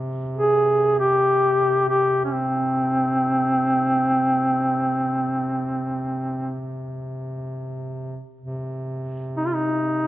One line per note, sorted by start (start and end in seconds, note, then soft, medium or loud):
0.00 8.24 C3 soft
0.37 0.96 G#4 medium
1.00 1.85 G4 medium
1.89 2.20 G4 medium
2.24 2.34 C#4 soft
2.32 6.57 C4 medium
8.41 10.07 C3 soft
9.37 9.47 D#4 medium
9.46 9.56 F4 medium
9.54 10.07 D#4 medium